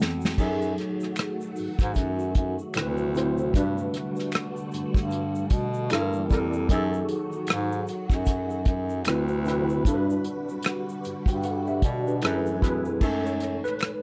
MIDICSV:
0, 0, Header, 1, 5, 480
1, 0, Start_track
1, 0, Tempo, 789474
1, 231, Time_signature, 4, 2, 24, 8
1, 8525, End_track
2, 0, Start_track
2, 0, Title_t, "Tine electric piano"
2, 0, Program_c, 0, 4
2, 0, Control_c, 0, 64, 127
2, 0, Note_on_c, 0, 52, 54
2, 0, Note_on_c, 0, 56, 49
2, 0, Note_on_c, 0, 57, 48
2, 0, Note_on_c, 0, 59, 52
2, 0, Note_on_c, 0, 66, 69
2, 0, Note_on_c, 0, 78, 87
2, 90, Note_off_c, 0, 52, 0
2, 92, Note_off_c, 0, 56, 0
2, 93, Note_off_c, 0, 57, 0
2, 94, Note_off_c, 0, 59, 0
2, 231, Note_on_c, 0, 54, 82
2, 237, Note_on_c, 0, 63, 71
2, 239, Note_on_c, 0, 68, 77
2, 240, Control_c, 0, 64, 0
2, 244, Note_off_c, 0, 78, 0
2, 245, Note_on_c, 0, 69, 86
2, 246, Note_off_c, 0, 66, 0
2, 329, Control_c, 0, 64, 127
2, 1078, Note_off_c, 0, 54, 0
2, 1081, Note_off_c, 0, 63, 0
2, 1082, Note_off_c, 0, 68, 0
2, 1085, Note_off_c, 0, 69, 0
2, 1673, Note_on_c, 0, 50, 89
2, 1679, Note_on_c, 0, 60, 82
2, 1680, Control_c, 0, 64, 0
2, 1683, Note_on_c, 0, 64, 76
2, 1684, Note_on_c, 0, 66, 85
2, 1688, Note_on_c, 0, 71, 92
2, 1802, Control_c, 0, 64, 127
2, 1885, Note_off_c, 0, 50, 0
2, 1888, Note_off_c, 0, 60, 0
2, 1890, Note_off_c, 0, 64, 0
2, 1890, Note_off_c, 0, 66, 0
2, 1892, Note_off_c, 0, 71, 0
2, 1915, Note_on_c, 0, 50, 72
2, 1920, Note_on_c, 0, 60, 67
2, 1920, Note_on_c, 0, 64, 67
2, 1926, Note_on_c, 0, 66, 66
2, 1930, Note_on_c, 0, 72, 85
2, 2126, Note_off_c, 0, 50, 0
2, 2129, Note_off_c, 0, 60, 0
2, 2129, Note_off_c, 0, 64, 0
2, 2131, Note_off_c, 0, 66, 0
2, 2134, Note_off_c, 0, 72, 0
2, 2154, Note_on_c, 0, 55, 84
2, 2159, Control_c, 0, 64, 0
2, 2161, Note_on_c, 0, 62, 75
2, 2163, Note_on_c, 0, 66, 74
2, 2169, Note_on_c, 0, 71, 94
2, 2271, Control_c, 0, 64, 127
2, 3000, Note_off_c, 0, 55, 0
2, 3003, Note_off_c, 0, 62, 0
2, 3004, Note_off_c, 0, 66, 0
2, 3007, Note_off_c, 0, 71, 0
2, 3588, Note_on_c, 0, 55, 90
2, 3591, Note_on_c, 0, 64, 89
2, 3596, Note_on_c, 0, 69, 88
2, 3600, Control_c, 0, 64, 0
2, 3602, Note_on_c, 0, 70, 100
2, 3686, Control_c, 0, 64, 127
2, 3802, Note_off_c, 0, 55, 0
2, 3804, Note_off_c, 0, 64, 0
2, 3807, Note_off_c, 0, 69, 0
2, 3809, Note_off_c, 0, 70, 0
2, 3833, Note_on_c, 0, 55, 86
2, 3836, Note_on_c, 0, 64, 73
2, 3840, Note_on_c, 0, 69, 74
2, 3845, Note_on_c, 0, 70, 87
2, 4045, Note_off_c, 0, 55, 0
2, 4046, Note_off_c, 0, 64, 0
2, 4049, Note_off_c, 0, 69, 0
2, 4051, Note_off_c, 0, 70, 0
2, 4069, Note_on_c, 0, 54, 82
2, 4073, Note_on_c, 0, 63, 78
2, 4078, Note_on_c, 0, 68, 82
2, 4080, Control_c, 0, 64, 0
2, 4085, Note_on_c, 0, 69, 94
2, 4192, Control_c, 0, 64, 127
2, 4917, Note_off_c, 0, 54, 0
2, 4919, Note_off_c, 0, 63, 0
2, 4922, Note_off_c, 0, 68, 0
2, 4925, Note_off_c, 0, 69, 0
2, 5512, Note_on_c, 0, 50, 87
2, 5514, Note_on_c, 0, 60, 88
2, 5517, Note_on_c, 0, 64, 82
2, 5520, Control_c, 0, 64, 0
2, 5520, Note_on_c, 0, 66, 77
2, 5526, Note_on_c, 0, 71, 102
2, 5627, Control_c, 0, 64, 127
2, 5724, Note_off_c, 0, 50, 0
2, 5725, Note_off_c, 0, 60, 0
2, 5727, Note_off_c, 0, 64, 0
2, 5729, Note_off_c, 0, 66, 0
2, 5731, Note_off_c, 0, 71, 0
2, 5750, Note_on_c, 0, 50, 86
2, 5753, Note_on_c, 0, 60, 69
2, 5757, Note_on_c, 0, 64, 71
2, 5764, Note_on_c, 0, 66, 70
2, 5765, Note_on_c, 0, 71, 87
2, 5963, Note_off_c, 0, 50, 0
2, 5965, Note_off_c, 0, 60, 0
2, 5967, Note_off_c, 0, 64, 0
2, 5970, Note_off_c, 0, 66, 0
2, 5971, Note_off_c, 0, 71, 0
2, 5994, Note_on_c, 0, 55, 77
2, 5997, Note_on_c, 0, 62, 80
2, 5999, Control_c, 0, 64, 0
2, 6002, Note_on_c, 0, 66, 69
2, 6005, Note_on_c, 0, 69, 72
2, 6044, Note_on_c, 0, 71, 83
2, 6045, Note_off_c, 0, 69, 0
2, 6098, Control_c, 0, 64, 127
2, 6714, Note_off_c, 0, 62, 0
2, 6716, Note_off_c, 0, 66, 0
2, 6738, Note_off_c, 0, 71, 0
2, 6840, Note_off_c, 0, 55, 0
2, 6858, Note_on_c, 0, 79, 56
2, 6863, Note_on_c, 0, 71, 50
2, 6949, Note_off_c, 0, 79, 0
2, 6952, Note_off_c, 0, 71, 0
2, 6955, Note_on_c, 0, 78, 64
2, 6960, Note_on_c, 0, 69, 51
2, 7088, Note_off_c, 0, 78, 0
2, 7090, Note_off_c, 0, 69, 0
2, 7096, Note_on_c, 0, 76, 62
2, 7101, Note_on_c, 0, 67, 53
2, 7188, Note_off_c, 0, 76, 0
2, 7191, Note_off_c, 0, 67, 0
2, 7202, Note_on_c, 0, 74, 64
2, 7204, Note_on_c, 0, 66, 54
2, 7331, Note_off_c, 0, 74, 0
2, 7332, Note_off_c, 0, 66, 0
2, 7341, Note_on_c, 0, 71, 57
2, 7343, Note_on_c, 0, 62, 48
2, 7430, Note_on_c, 0, 54, 88
2, 7430, Note_on_c, 0, 64, 78
2, 7434, Note_on_c, 0, 68, 77
2, 7435, Note_off_c, 0, 71, 0
2, 7438, Control_c, 0, 64, 0
2, 7439, Note_on_c, 0, 69, 89
2, 7442, Note_on_c, 0, 71, 97
2, 7561, Control_c, 0, 64, 127
2, 7566, Note_off_c, 0, 62, 0
2, 7643, Note_off_c, 0, 54, 0
2, 7644, Note_off_c, 0, 64, 0
2, 7645, Note_off_c, 0, 68, 0
2, 7648, Note_off_c, 0, 69, 0
2, 7649, Note_off_c, 0, 71, 0
2, 7666, Note_on_c, 0, 66, 75
2, 7673, Note_on_c, 0, 64, 72
2, 7675, Note_on_c, 0, 68, 71
2, 7678, Note_on_c, 0, 69, 69
2, 7682, Note_on_c, 0, 71, 87
2, 7882, Note_off_c, 0, 66, 0
2, 7885, Note_off_c, 0, 64, 0
2, 7886, Note_off_c, 0, 68, 0
2, 7888, Note_off_c, 0, 69, 0
2, 7889, Note_off_c, 0, 71, 0
2, 7911, Note_on_c, 0, 56, 46
2, 7914, Note_on_c, 0, 69, 83
2, 7916, Note_on_c, 0, 57, 43
2, 7918, Control_c, 0, 64, 0
2, 7920, Note_on_c, 0, 63, 57
2, 8036, Control_c, 0, 64, 127
2, 8058, Note_off_c, 0, 69, 0
2, 8058, Note_on_c, 0, 73, 90
2, 8294, Note_on_c, 0, 71, 91
2, 8303, Note_off_c, 0, 73, 0
2, 8525, Note_off_c, 0, 56, 0
2, 8525, Note_off_c, 0, 57, 0
2, 8525, Note_off_c, 0, 63, 0
2, 8525, Note_off_c, 0, 71, 0
2, 8525, End_track
3, 0, Start_track
3, 0, Title_t, "String machine"
3, 0, Program_c, 1, 50
3, 235, Note_on_c, 1, 66, 96
3, 237, Note_on_c, 1, 51, 85
3, 237, Note_on_c, 1, 57, 76
3, 239, Note_on_c, 1, 54, 72
3, 1659, Note_off_c, 1, 66, 0
3, 1660, Note_off_c, 1, 51, 0
3, 1660, Note_off_c, 1, 57, 0
3, 1661, Note_off_c, 1, 54, 0
3, 1666, Note_on_c, 1, 48, 66
3, 1668, Note_on_c, 1, 64, 79
3, 1669, Note_on_c, 1, 57, 71
3, 1670, Note_on_c, 1, 54, 63
3, 2144, Note_off_c, 1, 48, 0
3, 2145, Note_off_c, 1, 64, 0
3, 2146, Note_off_c, 1, 54, 0
3, 2155, Note_on_c, 1, 50, 76
3, 2155, Note_on_c, 1, 66, 89
3, 2157, Note_on_c, 1, 55, 76
3, 3571, Note_off_c, 1, 57, 0
3, 3579, Note_off_c, 1, 50, 0
3, 3579, Note_off_c, 1, 66, 0
3, 3580, Note_off_c, 1, 55, 0
3, 3586, Note_on_c, 1, 52, 70
3, 3588, Note_on_c, 1, 67, 87
3, 3590, Note_on_c, 1, 58, 70
3, 4060, Note_on_c, 1, 51, 83
3, 4060, Note_on_c, 1, 66, 89
3, 4061, Note_on_c, 1, 54, 69
3, 4064, Note_off_c, 1, 52, 0
3, 4065, Note_off_c, 1, 67, 0
3, 4066, Note_off_c, 1, 58, 0
3, 5491, Note_off_c, 1, 51, 0
3, 5491, Note_off_c, 1, 66, 0
3, 5492, Note_off_c, 1, 54, 0
3, 5501, Note_on_c, 1, 54, 65
3, 5502, Note_on_c, 1, 64, 80
3, 5503, Note_on_c, 1, 71, 76
3, 5506, Note_on_c, 1, 48, 69
3, 5981, Note_off_c, 1, 54, 0
3, 5982, Note_off_c, 1, 64, 0
3, 5983, Note_on_c, 1, 55, 77
3, 5984, Note_off_c, 1, 48, 0
3, 5984, Note_on_c, 1, 66, 93
3, 5988, Note_on_c, 1, 50, 84
3, 7413, Note_off_c, 1, 55, 0
3, 7413, Note_off_c, 1, 66, 0
3, 7415, Note_off_c, 1, 50, 0
3, 7423, Note_on_c, 1, 80, 72
3, 7425, Note_on_c, 1, 52, 68
3, 7427, Note_on_c, 1, 57, 71
3, 7883, Note_off_c, 1, 71, 0
3, 7902, Note_off_c, 1, 80, 0
3, 7903, Note_off_c, 1, 52, 0
3, 7904, Note_off_c, 1, 57, 0
3, 8525, End_track
4, 0, Start_track
4, 0, Title_t, "Bass clarinet"
4, 0, Program_c, 2, 71
4, 7, Note_on_c, 2, 41, 72
4, 218, Note_off_c, 2, 41, 0
4, 240, Note_on_c, 2, 42, 88
4, 455, Note_off_c, 2, 42, 0
4, 968, Note_on_c, 2, 44, 43
4, 1021, Note_off_c, 2, 44, 0
4, 1096, Note_on_c, 2, 44, 84
4, 1198, Note_on_c, 2, 42, 91
4, 1207, Note_off_c, 2, 44, 0
4, 1413, Note_off_c, 2, 42, 0
4, 1440, Note_on_c, 2, 42, 77
4, 1565, Note_off_c, 2, 42, 0
4, 1687, Note_on_c, 2, 38, 96
4, 2135, Note_off_c, 2, 38, 0
4, 2161, Note_on_c, 2, 43, 92
4, 2375, Note_off_c, 2, 43, 0
4, 2883, Note_on_c, 2, 43, 46
4, 2937, Note_off_c, 2, 43, 0
4, 3013, Note_on_c, 2, 43, 78
4, 3355, Note_on_c, 2, 47, 84
4, 3364, Note_off_c, 2, 43, 0
4, 3572, Note_off_c, 2, 47, 0
4, 3602, Note_on_c, 2, 43, 100
4, 3841, Note_on_c, 2, 41, 87
4, 3850, Note_off_c, 2, 43, 0
4, 4055, Note_off_c, 2, 41, 0
4, 4076, Note_on_c, 2, 42, 100
4, 4292, Note_off_c, 2, 42, 0
4, 4565, Note_on_c, 2, 44, 96
4, 4777, Note_off_c, 2, 44, 0
4, 4930, Note_on_c, 2, 42, 80
4, 5246, Note_off_c, 2, 42, 0
4, 5273, Note_on_c, 2, 42, 90
4, 5526, Note_on_c, 2, 38, 101
4, 5535, Note_off_c, 2, 42, 0
4, 5974, Note_off_c, 2, 38, 0
4, 5996, Note_on_c, 2, 43, 86
4, 6213, Note_off_c, 2, 43, 0
4, 6726, Note_on_c, 2, 43, 45
4, 6779, Note_off_c, 2, 43, 0
4, 6855, Note_on_c, 2, 43, 89
4, 7168, Note_off_c, 2, 43, 0
4, 7194, Note_on_c, 2, 47, 78
4, 7412, Note_off_c, 2, 47, 0
4, 7442, Note_on_c, 2, 42, 96
4, 7655, Note_off_c, 2, 42, 0
4, 7680, Note_on_c, 2, 41, 74
4, 7894, Note_off_c, 2, 41, 0
4, 7919, Note_on_c, 2, 42, 95
4, 8272, Note_off_c, 2, 42, 0
4, 8525, End_track
5, 0, Start_track
5, 0, Title_t, "Drums"
5, 9, Note_on_c, 9, 38, 80
5, 69, Note_off_c, 9, 38, 0
5, 129, Note_on_c, 9, 82, 49
5, 151, Note_on_c, 9, 38, 83
5, 189, Note_off_c, 9, 82, 0
5, 212, Note_off_c, 9, 38, 0
5, 231, Note_on_c, 9, 36, 92
5, 232, Note_on_c, 9, 49, 85
5, 236, Note_on_c, 9, 82, 54
5, 291, Note_off_c, 9, 36, 0
5, 293, Note_off_c, 9, 49, 0
5, 297, Note_off_c, 9, 82, 0
5, 376, Note_on_c, 9, 82, 44
5, 436, Note_off_c, 9, 82, 0
5, 474, Note_on_c, 9, 42, 63
5, 488, Note_on_c, 9, 37, 38
5, 535, Note_off_c, 9, 42, 0
5, 548, Note_off_c, 9, 37, 0
5, 609, Note_on_c, 9, 82, 41
5, 628, Note_on_c, 9, 37, 38
5, 670, Note_off_c, 9, 82, 0
5, 689, Note_off_c, 9, 37, 0
5, 703, Note_on_c, 9, 42, 58
5, 706, Note_on_c, 9, 26, 56
5, 706, Note_on_c, 9, 82, 56
5, 725, Note_on_c, 9, 37, 102
5, 764, Note_off_c, 9, 42, 0
5, 767, Note_off_c, 9, 26, 0
5, 767, Note_off_c, 9, 82, 0
5, 786, Note_off_c, 9, 37, 0
5, 856, Note_on_c, 9, 82, 40
5, 917, Note_off_c, 9, 82, 0
5, 949, Note_on_c, 9, 82, 41
5, 961, Note_on_c, 9, 46, 44
5, 1009, Note_off_c, 9, 82, 0
5, 1022, Note_off_c, 9, 46, 0
5, 1087, Note_on_c, 9, 36, 92
5, 1089, Note_on_c, 9, 82, 50
5, 1102, Note_on_c, 9, 42, 51
5, 1105, Note_on_c, 9, 37, 35
5, 1148, Note_off_c, 9, 36, 0
5, 1150, Note_off_c, 9, 82, 0
5, 1163, Note_off_c, 9, 42, 0
5, 1166, Note_off_c, 9, 37, 0
5, 1183, Note_on_c, 9, 82, 50
5, 1191, Note_on_c, 9, 36, 70
5, 1192, Note_on_c, 9, 42, 70
5, 1244, Note_off_c, 9, 82, 0
5, 1252, Note_off_c, 9, 36, 0
5, 1253, Note_off_c, 9, 42, 0
5, 1333, Note_on_c, 9, 82, 35
5, 1393, Note_off_c, 9, 82, 0
5, 1427, Note_on_c, 9, 42, 58
5, 1430, Note_on_c, 9, 36, 84
5, 1488, Note_off_c, 9, 42, 0
5, 1491, Note_off_c, 9, 36, 0
5, 1573, Note_on_c, 9, 82, 40
5, 1634, Note_off_c, 9, 82, 0
5, 1665, Note_on_c, 9, 26, 55
5, 1665, Note_on_c, 9, 82, 60
5, 1666, Note_on_c, 9, 42, 79
5, 1686, Note_on_c, 9, 37, 105
5, 1726, Note_off_c, 9, 26, 0
5, 1726, Note_off_c, 9, 82, 0
5, 1727, Note_off_c, 9, 42, 0
5, 1747, Note_off_c, 9, 37, 0
5, 1807, Note_on_c, 9, 82, 42
5, 1868, Note_off_c, 9, 82, 0
5, 1914, Note_on_c, 9, 82, 44
5, 1928, Note_on_c, 9, 42, 65
5, 1931, Note_on_c, 9, 37, 34
5, 1975, Note_off_c, 9, 82, 0
5, 1989, Note_off_c, 9, 42, 0
5, 1992, Note_off_c, 9, 37, 0
5, 2053, Note_on_c, 9, 82, 49
5, 2114, Note_off_c, 9, 82, 0
5, 2152, Note_on_c, 9, 36, 94
5, 2157, Note_on_c, 9, 82, 51
5, 2160, Note_on_c, 9, 42, 76
5, 2213, Note_off_c, 9, 36, 0
5, 2218, Note_off_c, 9, 82, 0
5, 2221, Note_off_c, 9, 42, 0
5, 2297, Note_on_c, 9, 82, 43
5, 2358, Note_off_c, 9, 82, 0
5, 2394, Note_on_c, 9, 42, 62
5, 2407, Note_on_c, 9, 37, 37
5, 2455, Note_off_c, 9, 42, 0
5, 2468, Note_off_c, 9, 37, 0
5, 2529, Note_on_c, 9, 82, 43
5, 2550, Note_on_c, 9, 37, 39
5, 2552, Note_on_c, 9, 42, 48
5, 2590, Note_off_c, 9, 82, 0
5, 2611, Note_off_c, 9, 37, 0
5, 2613, Note_off_c, 9, 42, 0
5, 2624, Note_on_c, 9, 42, 61
5, 2627, Note_on_c, 9, 26, 55
5, 2627, Note_on_c, 9, 82, 55
5, 2646, Note_on_c, 9, 37, 114
5, 2685, Note_off_c, 9, 42, 0
5, 2688, Note_off_c, 9, 26, 0
5, 2688, Note_off_c, 9, 82, 0
5, 2707, Note_off_c, 9, 37, 0
5, 2776, Note_on_c, 9, 82, 40
5, 2836, Note_off_c, 9, 82, 0
5, 2866, Note_on_c, 9, 82, 37
5, 2881, Note_on_c, 9, 42, 68
5, 2926, Note_off_c, 9, 82, 0
5, 2942, Note_off_c, 9, 42, 0
5, 3006, Note_on_c, 9, 36, 94
5, 3009, Note_on_c, 9, 82, 45
5, 3022, Note_on_c, 9, 42, 48
5, 3024, Note_on_c, 9, 37, 37
5, 3067, Note_off_c, 9, 36, 0
5, 3070, Note_off_c, 9, 82, 0
5, 3083, Note_off_c, 9, 42, 0
5, 3085, Note_off_c, 9, 37, 0
5, 3105, Note_on_c, 9, 82, 53
5, 3114, Note_on_c, 9, 42, 60
5, 3166, Note_off_c, 9, 82, 0
5, 3174, Note_off_c, 9, 42, 0
5, 3254, Note_on_c, 9, 82, 37
5, 3314, Note_off_c, 9, 82, 0
5, 3344, Note_on_c, 9, 42, 56
5, 3348, Note_on_c, 9, 36, 94
5, 3404, Note_off_c, 9, 42, 0
5, 3409, Note_off_c, 9, 36, 0
5, 3489, Note_on_c, 9, 82, 44
5, 3550, Note_off_c, 9, 82, 0
5, 3586, Note_on_c, 9, 42, 86
5, 3588, Note_on_c, 9, 26, 58
5, 3588, Note_on_c, 9, 82, 54
5, 3606, Note_on_c, 9, 37, 113
5, 3647, Note_off_c, 9, 42, 0
5, 3649, Note_off_c, 9, 26, 0
5, 3649, Note_off_c, 9, 82, 0
5, 3667, Note_off_c, 9, 37, 0
5, 3726, Note_on_c, 9, 82, 45
5, 3787, Note_off_c, 9, 82, 0
5, 3830, Note_on_c, 9, 82, 44
5, 3834, Note_on_c, 9, 36, 94
5, 3843, Note_on_c, 9, 42, 68
5, 3846, Note_on_c, 9, 37, 33
5, 3891, Note_off_c, 9, 82, 0
5, 3895, Note_off_c, 9, 36, 0
5, 3903, Note_off_c, 9, 42, 0
5, 3907, Note_off_c, 9, 37, 0
5, 3971, Note_on_c, 9, 82, 50
5, 4032, Note_off_c, 9, 82, 0
5, 4068, Note_on_c, 9, 36, 97
5, 4071, Note_on_c, 9, 42, 76
5, 4077, Note_on_c, 9, 82, 54
5, 4129, Note_off_c, 9, 36, 0
5, 4132, Note_off_c, 9, 42, 0
5, 4137, Note_off_c, 9, 82, 0
5, 4217, Note_on_c, 9, 82, 41
5, 4278, Note_off_c, 9, 82, 0
5, 4308, Note_on_c, 9, 42, 64
5, 4369, Note_off_c, 9, 42, 0
5, 4452, Note_on_c, 9, 82, 43
5, 4512, Note_off_c, 9, 82, 0
5, 4540, Note_on_c, 9, 42, 58
5, 4548, Note_on_c, 9, 26, 55
5, 4548, Note_on_c, 9, 82, 59
5, 4562, Note_on_c, 9, 37, 112
5, 4601, Note_off_c, 9, 42, 0
5, 4609, Note_off_c, 9, 26, 0
5, 4609, Note_off_c, 9, 82, 0
5, 4623, Note_off_c, 9, 37, 0
5, 4695, Note_on_c, 9, 82, 43
5, 4756, Note_off_c, 9, 82, 0
5, 4785, Note_on_c, 9, 82, 40
5, 4795, Note_on_c, 9, 42, 67
5, 4846, Note_off_c, 9, 82, 0
5, 4856, Note_off_c, 9, 42, 0
5, 4922, Note_on_c, 9, 36, 90
5, 4926, Note_on_c, 9, 82, 48
5, 4939, Note_on_c, 9, 37, 38
5, 4983, Note_off_c, 9, 36, 0
5, 4986, Note_off_c, 9, 82, 0
5, 5000, Note_off_c, 9, 37, 0
5, 5018, Note_on_c, 9, 82, 60
5, 5026, Note_on_c, 9, 36, 77
5, 5027, Note_on_c, 9, 42, 71
5, 5079, Note_off_c, 9, 82, 0
5, 5087, Note_off_c, 9, 36, 0
5, 5088, Note_off_c, 9, 42, 0
5, 5169, Note_on_c, 9, 82, 34
5, 5229, Note_off_c, 9, 82, 0
5, 5261, Note_on_c, 9, 42, 65
5, 5265, Note_on_c, 9, 36, 96
5, 5322, Note_off_c, 9, 42, 0
5, 5325, Note_off_c, 9, 36, 0
5, 5409, Note_on_c, 9, 82, 43
5, 5470, Note_off_c, 9, 82, 0
5, 5500, Note_on_c, 9, 42, 84
5, 5503, Note_on_c, 9, 26, 58
5, 5503, Note_on_c, 9, 82, 55
5, 5520, Note_on_c, 9, 37, 107
5, 5561, Note_off_c, 9, 42, 0
5, 5564, Note_off_c, 9, 26, 0
5, 5564, Note_off_c, 9, 82, 0
5, 5581, Note_off_c, 9, 37, 0
5, 5644, Note_on_c, 9, 82, 43
5, 5705, Note_off_c, 9, 82, 0
5, 5746, Note_on_c, 9, 82, 44
5, 5764, Note_on_c, 9, 42, 73
5, 5767, Note_on_c, 9, 37, 36
5, 5807, Note_off_c, 9, 82, 0
5, 5825, Note_off_c, 9, 42, 0
5, 5828, Note_off_c, 9, 37, 0
5, 5893, Note_on_c, 9, 82, 49
5, 5954, Note_off_c, 9, 82, 0
5, 5989, Note_on_c, 9, 36, 97
5, 5995, Note_on_c, 9, 42, 71
5, 5997, Note_on_c, 9, 82, 55
5, 6050, Note_off_c, 9, 36, 0
5, 6056, Note_off_c, 9, 42, 0
5, 6058, Note_off_c, 9, 82, 0
5, 6141, Note_on_c, 9, 82, 47
5, 6202, Note_off_c, 9, 82, 0
5, 6228, Note_on_c, 9, 42, 62
5, 6289, Note_off_c, 9, 42, 0
5, 6377, Note_on_c, 9, 82, 43
5, 6438, Note_off_c, 9, 82, 0
5, 6460, Note_on_c, 9, 42, 65
5, 6472, Note_on_c, 9, 26, 56
5, 6472, Note_on_c, 9, 82, 57
5, 6482, Note_on_c, 9, 37, 109
5, 6521, Note_off_c, 9, 42, 0
5, 6533, Note_off_c, 9, 26, 0
5, 6533, Note_off_c, 9, 82, 0
5, 6542, Note_off_c, 9, 37, 0
5, 6621, Note_on_c, 9, 82, 41
5, 6682, Note_off_c, 9, 82, 0
5, 6713, Note_on_c, 9, 82, 38
5, 6718, Note_on_c, 9, 42, 67
5, 6774, Note_off_c, 9, 82, 0
5, 6779, Note_off_c, 9, 42, 0
5, 6845, Note_on_c, 9, 36, 87
5, 6855, Note_on_c, 9, 82, 48
5, 6861, Note_on_c, 9, 42, 51
5, 6906, Note_off_c, 9, 36, 0
5, 6916, Note_off_c, 9, 82, 0
5, 6922, Note_off_c, 9, 42, 0
5, 6949, Note_on_c, 9, 82, 57
5, 6953, Note_on_c, 9, 42, 69
5, 7009, Note_off_c, 9, 82, 0
5, 7013, Note_off_c, 9, 42, 0
5, 7097, Note_on_c, 9, 82, 35
5, 7158, Note_off_c, 9, 82, 0
5, 7188, Note_on_c, 9, 36, 90
5, 7188, Note_on_c, 9, 42, 61
5, 7199, Note_on_c, 9, 82, 47
5, 7249, Note_off_c, 9, 36, 0
5, 7249, Note_off_c, 9, 42, 0
5, 7260, Note_off_c, 9, 82, 0
5, 7341, Note_on_c, 9, 82, 43
5, 7402, Note_off_c, 9, 82, 0
5, 7427, Note_on_c, 9, 42, 79
5, 7433, Note_on_c, 9, 26, 53
5, 7433, Note_on_c, 9, 82, 53
5, 7448, Note_on_c, 9, 37, 104
5, 7488, Note_off_c, 9, 42, 0
5, 7494, Note_off_c, 9, 26, 0
5, 7494, Note_off_c, 9, 82, 0
5, 7508, Note_off_c, 9, 37, 0
5, 7577, Note_on_c, 9, 82, 46
5, 7637, Note_off_c, 9, 82, 0
5, 7674, Note_on_c, 9, 36, 89
5, 7683, Note_on_c, 9, 42, 68
5, 7687, Note_on_c, 9, 37, 34
5, 7735, Note_off_c, 9, 36, 0
5, 7744, Note_off_c, 9, 42, 0
5, 7747, Note_off_c, 9, 37, 0
5, 7814, Note_on_c, 9, 82, 49
5, 7874, Note_off_c, 9, 82, 0
5, 7910, Note_on_c, 9, 36, 89
5, 7910, Note_on_c, 9, 49, 90
5, 7919, Note_on_c, 9, 82, 54
5, 7970, Note_off_c, 9, 36, 0
5, 7970, Note_off_c, 9, 49, 0
5, 7980, Note_off_c, 9, 82, 0
5, 8063, Note_on_c, 9, 82, 44
5, 8124, Note_off_c, 9, 82, 0
5, 8149, Note_on_c, 9, 42, 54
5, 8162, Note_on_c, 9, 37, 34
5, 8210, Note_off_c, 9, 42, 0
5, 8223, Note_off_c, 9, 37, 0
5, 8297, Note_on_c, 9, 82, 44
5, 8310, Note_on_c, 9, 37, 36
5, 8358, Note_off_c, 9, 82, 0
5, 8371, Note_off_c, 9, 37, 0
5, 8385, Note_on_c, 9, 42, 58
5, 8394, Note_on_c, 9, 26, 55
5, 8394, Note_on_c, 9, 82, 56
5, 8406, Note_on_c, 9, 37, 103
5, 8445, Note_off_c, 9, 42, 0
5, 8455, Note_off_c, 9, 26, 0
5, 8455, Note_off_c, 9, 82, 0
5, 8467, Note_off_c, 9, 37, 0
5, 8525, End_track
0, 0, End_of_file